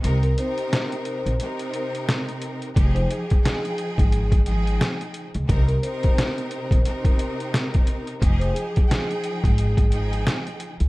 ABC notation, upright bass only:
X:1
M:4/4
L:1/16
Q:"Swing 16ths" 1/4=88
K:Fm
V:1 name="Upright bass" clef=bass
C,,2 z4 z B,,, z8 | F,,,2 z4 z A,,,4- A,,, z3 D,, | C,,2 z4 z B,,, z8 | F,,,2 z4 z A,,,4- A,,, z3 D,, |]